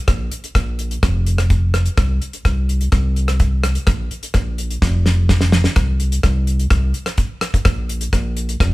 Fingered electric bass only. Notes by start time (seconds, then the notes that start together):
0.08 A#1
0.55 A#1
1.03 F1
1.98 C2
2.45 C2
2.92 C2
3.87 A#1
4.35 A#1
4.82 F1
5.76 C2
6.24 C2
6.71 C2
7.65 A#1
8.13 A#1
8.61 F1